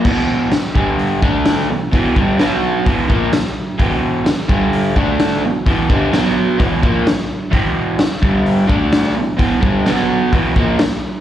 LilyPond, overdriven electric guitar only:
\new Staff \with { instrumentName = "Overdriven electric guitar" } { \clef bass \time 4/4 \key e \minor \tempo 4 = 128 <e, b, e>4 r8 <g, d g>4 <d a d'>4 <e, b,>8 | <e, b, e>8 <g, d g>8 <b, fis b>4 <e, b, e>8 <ais, f ais>8 r4 | <e, b, e>4 r8 <g, d g>4 <d a d'>4 <e, b,>8 | <e, b, e>8 <g, d g>8 <b, fis b>4 <e, b, e>8 <ais, f ais>8 r4 |
<e, b, e>4 r8 <g, d g>4 <d a d'>4 <e, b,>8 | <e, b, e>8 <g, d g>8 <b, fis b>4 <e, b, e>8 <ais, f ais>8 r4 | }